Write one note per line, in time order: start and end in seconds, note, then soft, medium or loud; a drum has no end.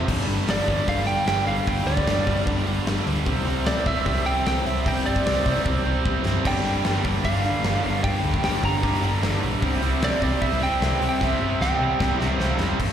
0.07 0.20 G1 loud
0.07 0.26 G2 loud
0.07 0.26 D3 loud
0.07 0.28 G3 loud
0.07 kick loud
0.07 crash loud
0.27 0.40 G1 medium
0.27 0.47 G2 medium
0.27 0.47 D3 medium
0.27 0.48 G3 medium
0.27 snare soft
0.27 open hi-hat medium
0.47 0.60 G1 medium
0.47 0.66 G2 medium
0.47 0.66 D3 medium
0.47 0.67 G3 medium
0.47 0.86 D5 loud
0.47 snare loud
0.47 open hi-hat loud
0.67 0.80 G1 medium
0.67 0.86 G2 medium
0.67 0.87 D3 loud
0.67 0.88 G3 medium
0.67 kick medium
0.67 open hi-hat medium
0.87 1.12 G1 medium
0.87 1.06 G2 loud
0.87 1.06 D3 loud
0.87 1.08 G3 loud
0.87 1.06 F5 loud
0.87 kick loud
0.87 open hi-hat medium
1.07 1.25 G2 loud
1.07 1.26 D3 medium
1.07 1.28 G3 loud
1.07 1.27 G5 loud
1.07 open hi-hat medium
1.26 1.39 G1 medium
1.26 1.46 G2 medium
1.26 1.46 D3 medium
1.26 1.48 G3 medium
1.26 1.46 G5 loud
1.26 snare loud
1.26 open hi-hat medium
1.47 1.59 G1 loud
1.47 1.65 G2 loud
1.47 1.66 D3 loud
1.47 1.68 G3 loud
1.47 1.68 F5 medium
1.47 open hi-hat medium
1.66 1.79 G1 medium
1.66 1.86 G2 loud
1.66 1.87 D3 loud
1.66 1.88 G3 loud
1.66 1.88 G5 loud
1.66 kick loud
1.66 open hi-hat medium
1.87 1.99 D2 loud
1.87 2.05 G2 medium
1.87 2.06 D3 medium
1.87 2.08 G3 loud
1.87 2.43 D5 medium
1.87 snare soft
1.87 open hi-hat medium
1.97 kick loud
2.06 2.19 G1 medium
2.06 2.26 G2 medium
2.06 2.26 D3 medium
2.06 2.28 G3 medium
2.06 snare loud
2.06 open hi-hat loud
2.27 2.45 G2 medium
2.27 2.39 G2 loud
2.27 2.46 D3 loud
2.27 2.47 G3 loud
2.27 kick medium
2.27 open hi-hat medium
2.46 2.59 G1 loud
2.46 2.65 G2 loud
2.46 2.66 D3 loud
2.46 2.67 G3 loud
2.46 kick loud
2.46 open hi-hat medium
2.66 2.79 G1 loud
2.66 2.85 G2 medium
2.66 2.86 D3 loud
2.66 2.87 G3 loud
2.66 open hi-hat medium
2.86 2.98 G1 loud
2.86 3.04 G2 medium
2.86 3.05 D3 medium
2.86 3.07 G3 medium
2.86 snare loud
2.86 open hi-hat medium
3.06 3.28 D2 medium
3.06 3.25 G2 medium
3.06 3.25 D3 loud
3.06 3.26 G3 loud
3.06 open hi-hat medium
3.26 3.38 C2 loud
3.26 3.46 C3 loud
3.26 3.46 G3 loud
3.26 3.47 C4 loud
3.26 kick loud
3.26 open hi-hat medium
3.46 3.58 C2 loud
3.46 3.65 C3 medium
3.46 3.66 G3 medium
3.46 3.67 C4 loud
3.46 snare soft
3.46 open hi-hat medium
3.66 3.78 C2 loud
3.66 3.85 C3 medium
3.66 3.85 G3 medium
3.66 3.86 C4 medium
3.66 3.87 D5 medium
3.66 snare loud
3.66 open hi-hat medium
3.85 3.98 C2 medium
3.85 4.04 C3 medium
3.85 4.06 G3 medium
3.85 4.05 C4 loud
3.85 4.27 E5 loud
3.85 kick medium
3.85 open hi-hat medium
4.05 4.30 C2 medium
4.05 4.24 C3 loud
4.05 4.25 G3 loud
4.05 4.25 C4 loud
4.05 kick loud
4.05 open hi-hat medium
4.25 4.44 C3 loud
4.25 4.46 G3 loud
4.25 4.46 C4 loud
4.25 4.46 G5 loud
4.25 open hi-hat medium
4.46 4.58 C2 medium
4.46 4.64 C3 medium
4.46 4.66 G3 loud
4.46 4.65 C4 medium
4.46 4.67 G5 loud
4.46 snare loud
4.46 open hi-hat medium
4.65 4.78 C2 loud
4.65 4.84 C3 loud
4.65 4.86 G3 loud
4.65 4.86 C4 loud
4.65 4.88 E5 medium
4.65 open hi-hat medium
4.85 4.98 C2 loud
4.85 5.04 C3 loud
4.85 5.06 G3 loud
4.85 5.06 C4 loud
4.85 5.07 G5 loud
4.85 kick loud
4.85 open hi-hat medium
5.05 5.18 G1 loud
5.05 5.24 C3 medium
5.05 5.26 G3 loud
5.05 5.26 C4 loud
5.05 5.61 D5 loud
5.05 open hi-hat medium
5.16 kick medium
5.26 5.38 C2 loud
5.26 5.44 C3 medium
5.26 5.46 G3 medium
5.26 5.46 C4 medium
5.26 snare loud
5.26 open hi-hat loud
5.45 5.64 C3 medium
5.45 5.58 C3 medium
5.45 5.66 G3 medium
5.45 5.66 C4 loud
5.45 kick medium
5.45 open hi-hat medium
5.65 5.78 C2 medium
5.65 5.84 C3 loud
5.65 5.85 G3 loud
5.65 5.85 C4 loud
5.65 kick loud
5.85 5.97 C2 medium
5.85 6.03 C3 loud
5.85 6.05 G3 medium
5.85 6.05 C4 loud
6.04 6.17 C2 loud
6.04 6.23 C3 medium
6.04 6.25 G3 medium
6.04 6.25 C4 loud
6.04 kick loud
6.24 6.37 G2 loud
6.24 6.43 C3 loud
6.24 6.45 G3 loud
6.24 6.44 C4 loud
6.24 snare medium
6.45 6.57 G1 medium
6.45 6.65 G2 loud
6.45 6.65 D3 loud
6.45 6.66 G3 loud
6.45 7.25 A#3 loud
6.45 7.26 D4 loud
6.45 7.02 G5 loud
6.45 kick loud
6.45 splash medium
6.45 crash loud
6.65 6.77 G1 medium
6.65 6.84 G2 medium
6.65 6.84 D3 medium
6.65 6.86 G3 medium
6.65 snare soft
6.65 open hi-hat medium
6.85 6.97 G1 medium
6.85 7.04 G2 medium
6.85 7.04 D3 loud
6.85 7.05 G3 medium
6.85 snare loud
6.85 open hi-hat medium
7.04 7.16 G1 loud
7.04 7.23 G2 medium
7.04 7.23 D3 medium
7.04 7.25 G3 loud
7.04 kick loud
7.04 open hi-hat medium
7.24 7.48 G1 medium
7.24 7.43 G2 loud
7.24 7.43 D3 loud
7.24 7.45 G3 loud
7.24 8.03 A#3 loud
7.24 8.03 D4 medium
7.24 8.00 F5 loud
7.24 kick loud
7.24 open hi-hat loud
7.44 7.62 G2 medium
7.44 7.63 D3 medium
7.44 7.64 G3 loud
7.44 open hi-hat medium
7.64 7.76 G1 loud
7.64 7.82 G2 medium
7.64 7.83 D3 medium
7.64 7.85 G3 medium
7.64 snare loud
7.64 open hi-hat medium
7.84 7.96 G1 loud
7.84 8.02 G2 loud
7.84 8.03 D3 loud
7.84 8.04 G3 medium
7.84 open hi-hat medium
8.03 8.16 G1 loud
8.03 8.22 G2 loud
8.03 8.22 D3 loud
8.03 8.23 G3 loud
8.03 8.83 A#3 loud
8.03 8.83 D4 loud
8.03 8.43 G5 loud
8.03 kick loud
8.03 open hi-hat medium
8.23 8.36 D2 medium
8.23 8.42 G2 loud
8.23 8.42 D3 loud
8.23 8.44 G3 loud
8.23 open hi-hat medium
8.34 kick medium
8.43 8.55 G1 medium
8.43 8.61 G2 medium
8.43 8.62 D3 medium
8.43 8.63 G3 medium
8.43 8.64 G5 loud
8.43 snare loud
8.43 open hi-hat loud
8.62 8.82 G2 medium
8.62 8.76 G2 loud
8.62 8.82 D3 medium
8.62 8.84 G3 loud
8.62 9.39 A#5 loud
8.62 kick medium
8.62 open hi-hat medium
8.83 8.95 G1 loud
8.83 9.01 G2 medium
8.83 9.02 D3 loud
8.83 9.03 G3 loud
8.83 9.62 A#3 medium
8.83 9.62 D4 medium
8.83 kick loud
8.83 open hi-hat loud
9.02 9.15 G1 medium
9.02 9.21 G2 medium
9.02 9.22 D3 loud
9.02 9.23 G3 loud
9.02 open hi-hat medium
9.22 9.35 G1 loud
9.22 9.41 G2 medium
9.22 9.42 D3 medium
9.22 9.43 G3 medium
9.22 snare loud
9.22 open hi-hat medium
9.42 9.55 A#1 medium
9.42 9.61 G2 medium
9.42 9.61 D3 loud
9.42 9.63 G3 loud
9.42 open hi-hat medium
9.62 9.75 C2 medium
9.62 9.81 C3 loud
9.62 9.82 G3 loud
9.62 9.83 C4 loud
9.62 10.43 E4 loud
9.62 kick loud
9.62 open hi-hat medium
9.82 9.94 C2 loud
9.82 10.01 C3 medium
9.82 10.02 G3 medium
9.82 10.03 C4 loud
9.82 open hi-hat medium
10.01 10.14 C2 medium
10.01 10.21 C3 medium
10.01 10.22 G3 medium
10.01 10.22 C4 loud
10.01 10.22 D5 loud
10.01 snare loud
10.01 open hi-hat medium
10.21 10.34 C2 medium
10.21 10.40 C3 medium
10.21 10.41 G3 medium
10.21 10.41 C4 medium
10.21 10.43 D5 medium
10.21 kick medium
10.21 open hi-hat medium
10.41 10.65 C2 loud
10.41 10.60 C3 loud
10.41 10.61 G3 loud
10.41 10.61 C4 loud
10.41 11.21 E4 loud
10.41 10.62 E5 loud
10.41 kick loud
10.41 open hi-hat medium
10.61 10.79 C3 loud
10.61 10.81 G3 loud
10.61 10.81 C4 loud
10.61 11.08 G5 loud
10.61 open hi-hat medium
10.80 10.93 C2 medium
10.80 10.99 C3 medium
10.80 11.01 G3 medium
10.80 11.00 C4 medium
10.80 snare loud
10.80 open hi-hat medium
11.00 11.13 C2 loud
11.00 11.19 C3 loud
11.00 11.20 G3 medium
11.00 11.21 C4 loud
11.00 open hi-hat medium
11.09 11.23 G5 medium
11.20 11.33 C2 loud
11.20 11.40 C3 loud
11.20 11.40 G3 loud
11.20 11.41 C4 loud
11.20 12.00 E4 loud
11.20 11.62 E5 loud
11.20 kick loud
11.20 snare medium
11.41 11.53 G1 medium
11.41 11.59 C3 medium
11.41 11.60 G3 medium
11.41 11.60 C4 loud
11.60 11.72 C2 medium
11.60 11.79 C3 medium
11.60 11.80 G3 medium
11.60 11.80 C4 medium
11.60 12.28 G5 loud
11.60 snare medium
11.80 11.99 C3 medium
11.80 11.93 C3 medium
11.80 11.99 G3 medium
11.80 12.00 C4 medium
12.00 12.12 C2 medium
12.00 12.18 C3 loud
12.00 12.19 G3 loud
12.00 12.19 C4 loud
12.00 12.79 E4 loud
12.00 kick loud
12.00 snare loud
12.20 12.32 C2 medium
12.20 12.38 C3 medium
12.20 12.39 G3 medium
12.20 12.39 C4 medium
12.20 snare medium
12.28 12.56 F5 loud
12.39 12.52 C2 medium
12.39 12.58 C3 medium
12.39 12.59 G3 medium
12.39 12.59 C4 medium
12.39 snare loud
12.59 12.71 F1 medium
12.59 12.78 C3 medium
12.59 12.78 G3 medium
12.59 12.79 C4 loud
12.59 snare loud
12.79 12.93 G1 medium
12.79 12.93 G2 loud
12.79 kick loud
12.79 crash loud